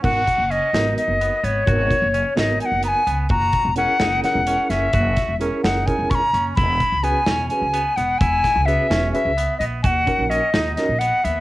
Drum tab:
CC |x------|-------|-------|-------|
HH |-xxxxxx|xxxxxxx|xxxxxxx|xxxxxxx|
SD |---o---|---o---|---oo-o|-o-o---|
BD |oo-----|oo-----|oo-----|oo--oo-|

CC |-------|-------|-------|
HH |xxxxxxx|xxxxxxx|xxxxxxx|
SD |---o---|-o-o---|---oo--|
BD |oo-----|oo-----|oo-----|